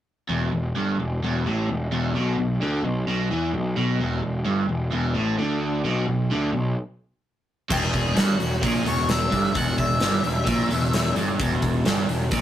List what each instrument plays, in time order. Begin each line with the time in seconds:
0.29 picked electric bass E1, overdriven electric guitar E2
0.52 picked electric bass E1, overdriven electric guitar E2
0.75 picked electric bass G1, overdriven electric guitar G2
0.99 picked electric bass E1, overdriven electric guitar E2
1.22 picked electric bass E1, overdriven electric guitar E2
1.46 picked electric bass A1, overdriven electric guitar A2
1.68 picked electric bass E1, overdriven electric guitar E2
1.90 picked electric bass E1, overdriven electric guitar E2
2.14 picked electric bass B1, overdriven electric guitar B2
2.38 picked electric bass B1, overdriven electric guitar B2
2.60 picked electric bass D2, overdriven electric guitar D3
2.83 picked electric bass B1, overdriven electric guitar B2
3.07 picked electric bass B1, overdriven electric guitar B2
3.30 picked electric bass E2, overdriven electric guitar E3
3.54 picked electric bass B1, overdriven electric guitar B2
3.77 picked electric bass B1, overdriven electric guitar B2
4.00 picked electric bass E1, overdriven electric guitar E2
4.23 picked electric bass E1, overdriven electric guitar E2
4.45 picked electric bass G1, overdriven electric guitar G2
4.69 picked electric bass E1, overdriven electric guitar E2
4.92 picked electric bass E1, overdriven electric guitar E2
5.15 picked electric bass A1, overdriven electric guitar A2
5.38 picked electric bass D2, overdriven electric guitar D3
5.85 picked electric bass B1, overdriven electric guitar B2
6.08 picked electric bass B1, overdriven electric guitar B2
6.31 picked electric bass D2, overdriven electric guitar D3
6.53 picked electric bass B1, overdriven electric guitar B2
7.70 picked electric bass E1, overdriven electric guitar E2, lead electric guitar G#4, kick, crash
7.94 kick, open hi-hat
8.15 picked electric bass G1, overdriven electric guitar G2, lead electric guitar F#4, snare, open hi-hat
8.39 picked electric bass E1, overdriven electric guitar E2, open hi-hat
8.62 picked electric bass A#1, overdriven electric guitar A#2, lead electric guitar G#4, kick, open hi-hat
8.85 picked electric bass E1, overdriven electric guitar E2, lead electric guitar C#5, open hi-hat
9.09 lead electric guitar E5, snare, open hi-hat
9.31 picked electric bass G1, overdriven electric guitar G2, kick, open hi-hat
9.54 picked electric bass E1, overdriven electric guitar E2, lead electric guitar F#5, kick, open hi-hat
9.78 lead electric guitar E5, kick, open hi-hat
10.01 picked electric bass G1, overdriven electric guitar G2, snare, open hi-hat
10.23 picked electric bass E1, overdriven electric guitar E2, open hi-hat
10.46 picked electric bass A#1, overdriven electric guitar A#2, kick, open hi-hat
10.69 picked electric bass E1, overdriven electric guitar E2, open hi-hat
10.93 snare, open hi-hat
11.15 picked electric bass G1, overdriven electric guitar G2, open hi-hat
11.39 picked electric bass E1, overdriven electric guitar E2, kick, open hi-hat
11.62 kick, open hi-hat
11.85 picked electric bass G1, overdriven electric guitar G2, snare, open hi-hat
12.08 picked electric bass E1, overdriven electric guitar E2, open hi-hat
12.31 picked electric bass A#1, overdriven electric guitar A#2, kick, open hi-hat